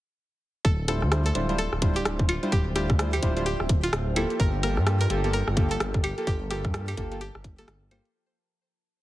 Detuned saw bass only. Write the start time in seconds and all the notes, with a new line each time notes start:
0.65 D1
1.02 D2
1.35 D1
1.73 D1
2.05 D1
2.52 D1
2.90 D2
3.22 D1
3.60 D1
3.93 D1
4.40 G1
4.77 G2
5.10 G1
5.47 G1
5.80 G1
6.27 G1
6.65 G2
6.97 G1
7.35 G1
7.68 G1